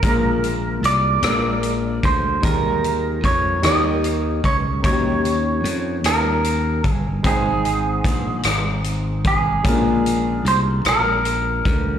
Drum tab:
HH |xxxxxx|xxxxxx|xxxxxx|xxxxxx|
SD |---r--|---r--|---r--|--rr--|
BD |o----o|o-o--o|o----o|o-o--o|

HH |xxxxxx|
SD |---r--|
BD |o----o|